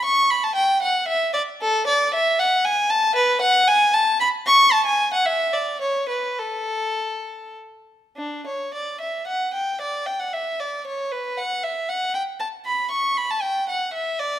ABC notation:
X:1
M:3/4
L:1/16
Q:1/4=114
K:Amix
V:1 name="Violin"
c'2 b a g2 f2 e2 d2 | [K:A] A2 d2 e2 f2 g2 a2 | B2 f2 g2 a2 b2 c'2 | a g2 f e2 d2 c2 B2 |
A8 z4 | [K:D] D2 c2 d2 e2 f2 g2 | d2 g f e2 d2 c2 B2 | f2 e2 f2 g2 a2 b2 |
c'2 b a g2 f2 e2 d2 |]